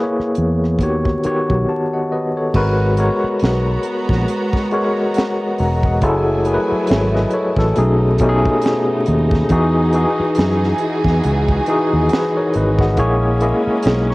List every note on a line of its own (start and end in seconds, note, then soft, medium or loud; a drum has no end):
0.00 0.82 A#3 medium
0.00 0.83 E4 medium
0.00 0.82 G#4 medium
0.00 0.83 B4 medium
0.00 0.03 C#5 medium
0.00 0.82 C#5 medium
0.20 muted fingered electric bass stroke soft
0.20 cross-stick soft
0.35 0.80 E2 medium
0.35 closed hi-hat medium
0.64 cross-stick soft
0.79 1.14 D#2 medium
0.79 1.20 D#3 medium
0.79 1.20 B3 medium
0.79 1.20 F#4 medium
0.79 1.20 G4 medium
0.79 kick medium
0.79 closed hi-hat medium
0.83 1.21 C#5 medium
1.05 kick medium
1.05 cross-stick soft
1.24 2.40 D#3 medium
1.24 2.41 B3 medium
1.24 2.41 F#4 medium
1.24 2.41 G4 medium
1.24 1.69 C#5 medium
1.24 muted fingered electric bass stroke soft
1.24 closed hi-hat medium
1.50 1.64 B1 medium
1.50 kick medium
1.69 1.92 F#5 soft
1.69 1.92 A5 medium
1.93 2.11 D#5 soft
1.93 2.11 F#5 medium
2.12 2.35 B4 soft
2.12 2.35 D#5 medium
2.37 2.78 A4 soft
2.37 2.78 C#5 medium
2.54 3.08 G#1 loud
2.54 2.93 G#3 medium
2.54 5.99 G#3 medium
2.54 5.99 B3 medium
2.54 5.99 F#4 medium
2.54 2.93 F#4 medium
2.54 2.94 A#4 medium
2.54 2.94 B4 loud
2.54 5.99 A#5 medium
2.54 kick loud
2.54 crash medium
2.97 4.53 G#3 medium
2.97 4.53 F#4 medium
2.97 4.53 A#4 medium
2.97 4.54 C#5 medium
2.97 closed hi-hat medium
3.24 muted fingered electric bass stroke medium
3.39 3.76 B1 medium
3.39 closed hi-hat medium
3.44 snare loud
3.83 closed hi-hat medium
4.09 4.24 A#1 medium
4.09 kick medium
4.09 snare soft
4.28 closed hi-hat medium
4.53 kick medium
4.53 snare soft
4.71 5.88 G#3 medium
4.71 5.88 F#4 medium
4.71 5.89 A#4 medium
4.71 5.89 C#5 medium
4.71 closed hi-hat medium
5.14 5.58 D#5 medium
5.14 5.57 F#5 medium
5.14 closed hi-hat medium
5.18 snare medium
5.58 6.03 E1 medium
5.58 5.83 F#5 medium
5.58 5.83 A#5 medium
5.58 open hi-hat medium
5.83 6.26 D#5 medium
5.83 6.26 F#5 medium
5.83 kick loud
6.02 6.56 F#1 loud
6.02 7.74 F#3 medium
6.02 6.41 F#3 loud
6.02 7.74 A3 medium
6.02 7.74 E4 medium
6.02 6.41 E4 medium
6.02 6.42 G#4 medium
6.02 6.42 A4 loud
6.02 7.74 G#5 medium
6.02 kick loud
6.02 closed hi-hat medium
6.45 7.76 F#3 medium
6.45 7.76 E4 medium
6.45 6.90 G#4 medium
6.45 6.54 A#4 medium
6.45 closed hi-hat medium
6.54 6.93 B4 medium
6.72 muted fingered electric bass stroke soft
6.87 7.24 G#1 medium
6.87 7.13 C#5 soft
6.87 7.13 E5 medium
6.87 closed hi-hat medium
6.92 snare loud
7.14 7.32 B4 medium
7.14 7.32 D#5 medium
7.14 snare soft
7.31 7.57 A4 medium
7.31 7.57 C#5 medium
7.31 closed hi-hat medium
7.57 7.72 A1 medium
7.57 8.00 F#4 medium
7.57 7.99 A4 medium
7.57 kick medium
7.57 snare soft
7.75 8.46 B1 loud
7.75 8.15 B2 medium
7.75 9.48 A3 medium
7.75 8.15 A3 medium
7.75 9.48 B3 medium
7.75 8.15 C#4 medium
7.75 12.94 D#4 medium
7.75 8.16 D#4 medium
7.75 8.16 G#4 medium
7.75 closed hi-hat medium
8.18 9.36 B2 medium
8.18 9.36 A3 medium
8.18 9.37 C#4 medium
8.18 9.37 D#4 medium
8.18 8.28 G4 medium
8.18 kick medium
8.18 closed hi-hat medium
8.29 9.40 G#4 loud
8.45 kick loud
8.61 closed hi-hat medium
8.66 snare medium
9.06 9.42 D#2 medium
9.06 closed hi-hat medium
9.31 kick loud
9.31 snare soft
9.49 10.04 E2 loud
9.49 9.89 E3 loud
9.49 12.95 E3 medium
9.49 9.89 D#4 medium
9.49 12.95 F#4 medium
9.49 9.90 F#4 medium
9.49 12.95 G#4 medium
9.49 9.90 G#4 medium
9.49 kick loud
9.49 closed hi-hat medium
9.92 11.48 E3 medium
9.92 11.49 D#4 medium
9.92 11.49 F#4 medium
9.92 11.49 G#4 medium
9.92 closed hi-hat medium
10.19 muted fingered electric bass stroke medium
10.35 10.72 F#2 medium
10.35 closed hi-hat medium
10.39 snare loud
10.63 snare soft
10.78 closed hi-hat medium
11.04 11.20 E2 medium
11.04 kick medium
11.04 snare soft
11.24 11.59 C#2 loud
11.24 closed hi-hat medium
11.48 kick loud
11.66 12.84 E3 loud
11.66 12.84 D#4 medium
11.66 12.84 F#4 medium
11.66 12.12 G#4 loud
11.66 closed hi-hat medium
11.93 12.08 D#2 medium
12.09 12.35 G#4 medium
12.09 12.35 B4 medium
12.09 closed hi-hat medium
12.13 snare loud
12.37 12.54 A#4 medium
12.37 12.54 C#5 medium
12.54 12.98 G#1 medium
12.54 12.79 B4 medium
12.54 12.79 D#5 medium
12.54 closed hi-hat medium
12.79 13.21 D#5 medium
12.79 13.21 F#5 medium
12.79 kick loud
12.79 snare soft
12.97 13.52 A#1 loud
12.97 14.15 G#3 medium
12.97 14.15 A#3 medium
12.97 13.36 A#3 medium
12.97 14.15 C#4 medium
12.97 13.37 E4 medium
12.97 13.37 G#4 medium
12.97 13.37 C#5 loud
12.97 kick loud
12.97 closed hi-hat medium
13.40 14.15 A#3 medium
13.40 14.15 E4 medium
13.40 14.15 G#4 medium
13.40 13.86 D#5 medium
13.40 closed hi-hat medium
13.67 muted fingered electric bass stroke medium
13.83 14.15 B1 medium
13.83 closed hi-hat medium
13.87 snare loud
14.10 14.15 A#5 medium
14.10 14.15 C#6 medium
14.10 snare soft